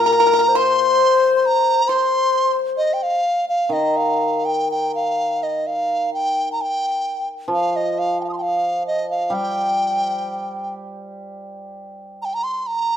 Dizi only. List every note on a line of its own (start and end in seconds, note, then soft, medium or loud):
0.00 0.58 A#5 loud
0.56 1.35 C6 loud
1.36 1.47 C6 medium
1.46 1.90 A#5 medium
1.88 2.55 C6 loud
2.77 2.95 D#5 medium
2.93 3.04 G5 medium
3.03 3.48 F5 medium
3.49 3.74 F5 medium
3.73 3.98 D#5 medium
3.97 4.46 F5 medium
4.45 4.69 G5 medium
4.71 4.92 G5 medium
4.95 5.45 F5 medium
5.43 5.68 D#5 medium
5.67 6.13 F5 medium
6.14 6.49 G5 medium
6.52 6.63 A#5 medium
6.61 7.28 G5 medium
7.54 7.78 F5 medium
7.76 8.00 D#5 medium
7.99 8.20 F5 medium
8.21 8.29 F5 soft
8.21 8.24 G5 soft
8.29 8.35 C6 soft
8.29 8.32 D#6 soft
8.38 8.86 F5 medium
8.38 8.44 G5 medium
8.87 9.09 D#5 medium
9.11 9.35 F5 medium
9.34 10.74 G5 medium
12.22 12.36 G5 medium
12.22 12.26 A#5 medium
12.34 12.45 A#5 medium
12.44 12.59 C6 medium
12.59 12.68 C6 medium
12.67 12.97 A#5 medium